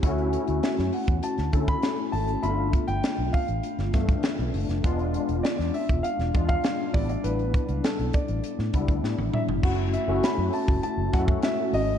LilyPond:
<<
  \new Staff \with { instrumentName = "Grand piano" } { \time 4/4 \key fis \phrygian \tempo 4 = 100 r4 e''8 fis''8 a''8. b''8. a''8 | b''8. g''8. f''2 r8 | r4 d''8 e''8 f''8. f''8. d''16 d''16 | b'4 a'8 d''4. r8 e''8 |
fis''8 e''8 b''8 a''8 a''8 fis''8 e''8 ees''8 | }
  \new Staff \with { instrumentName = "Tine electric piano" } { \time 4/4 \key fis \phrygian <a cis' e' fis'>4. r4 <a cis' e' a'>4~ <a cis' e' a'>16 r16 | <a b d' f'>4. r4 <e a b d'>4~ <e a b d'>16 r16 | <gis b d' f'>4. r4 <gis b d' f'>4 <g b d' e'>8~ | <g b d' e'>4 r4. <g b d' e'>4~ <g b d' e'>16 r16 |
<a cis' e' fis'>8 r16 <a cis' e' fis'>4~ <a cis' e' fis'>16 r8 <gis a cis' e' fis'>4~ <gis a cis' e' fis'>16 r16 | }
  \new Staff \with { instrumentName = "Fingered electric bass" } { \clef bass \time 4/4 \key fis \phrygian d,8. d,16 r16 fis,16 r16 e,16 r16 d,16 d8 r8 gis,,8 | g,,8. g,,16 r16 b,,16 r16 a,,16 r16 g,,16 g,8 r16 b,,16 fis,,16 f,,16 | e,,8. e,,16 r16 e,16 r16 e,,16 r16 e,,16 e,8 r8 a,,8 | a,,8. cis,16 r16 b,,16 r16 a,,16 r16 a,16 cis,16 d,16 a,16 a,,16 r16 g,,16 |
r8. fis,,16 r16 fis,16 r16 fis,,16 r16 fis,,16 fis,8 r8 gis,,8 | }
  \new DrumStaff \with { instrumentName = "Drums" } \drummode { \time 4/4 <hh bd>16 hh16 hh16 hh16 <hh sn>16 <hh sn>16 hho16 <hh bd>16 hh16 <hh sn>16 <hh bd>16 <hh bd>16 <hh sn>8 hho16 hh16 | hh8 <hh bd>16 hh16 <hh sn>8 <hho bd>16 hh16 hh16 <hh sn>16 <hh bd sn>16 <hh bd>16 <hh sn>16 hh16 hho16 <hh sn>16 | <hh bd>16 hh16 hh16 hh16 <hh sn>16 <hh sn>16 hho16 <hh bd>16 hh16 <hh sn>16 <hh bd>16 <hh bd>16 <hh sn>8 <hho bd>16 hh16 | hh16 hh16 <hh bd>16 hh16 <hh sn>16 hh16 <hh bd>16 hh16 hh16 sn16 <hh bd>16 <hh bd>16 sn16 tommh16 toml16 tomfh16 |
<cymc bd>8 hh8 <hh sn>8 hho16 bd16 hh8 <hh bd sn>16 bd16 <hh sn>8 hho8 | }
>>